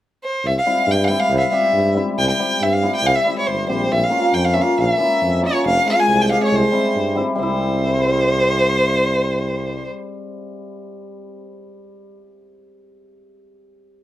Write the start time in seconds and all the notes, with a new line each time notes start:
0.24 C5
0.44 C2 E5
0.58 F5
0.66 G3 C4 E4
0.87 G2
0.91 G5
1.04 F5 G5
1.08 G3 C4 E4
1.20 F5
1.30 C2
1.38 E5 F5
1.52 G3 C4 G4 E5
1.73 G2
1.94 G3 C4 E4
2.18 C2 G5
2.28 G5
2.39 G3 C4 G4
2.61 G2 E5
2.73 F5
2.83 G3 C4 E4
2.95 G5
3.02 C2 F5
3.15 E5
3.24 G3 C4 E4
3.39 C#5
3.47 G1 C5
3.67 A#1 G3 C4 G4 C5
3.92 A#1 E5
4.03 F5
4.09 A#3 C#4 F4
4.33 F2 G5
4.45 F5
4.53 A#3 C#4 F4 E5
4.61 F5
4.78 A#1 E5
4.97 A#3 C#4 E4
5.21 F2
5.41 A#3 C#4 F4
5.46 C#5
5.64 F1 F5
5.85 G#3 C4 F4
5.90 F5
6.00 G#5
6.08 C2
6.21 G5
6.29 G#3 C4 G4 F5
6.44 C#5
6.52 C2 C5
6.72 G3 C4 E4
6.96 G2
7.15 G3 C4 E4
7.35 G3 C4
7.40 C2 E4 C5